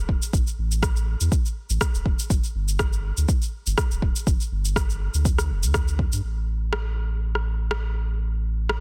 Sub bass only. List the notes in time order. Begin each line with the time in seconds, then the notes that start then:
0.09 E1
0.33 A1
0.58 A1
1.21 E2
1.70 A1
1.94 E1
2.06 E1
2.30 G1
2.55 G1
3.17 D2
3.66 G1
3.91 D1
4.02 D1
4.27 G1
4.51 G1
5.14 D2
5.50 F1
5.63 D2
6.12 G2
6.23 A1